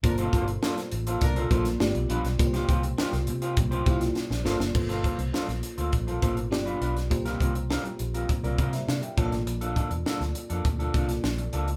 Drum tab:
CC |----------------|----------------|x---------------|----------------|
HH |xxxx-xxxxxxx-xxx|xxxx-xxxxxxx----|-xxx-xxxxxxx-xxx|xxxx-xxxxxxx-xxx|
SD |----oo-----oo--o|-o--oo-----ooooo|-o--oo------o--o|-o--o------oo--o|
BD |o-o-----o-o-----|o-o-----o-o-----|o-o-----o-o-----|o-o-----o-o---o-|

CC |----------------|
HH |xxxx-xxxxxxx-xxx|
SD |----oo-----oo---|
BD |--o-----o-o-----|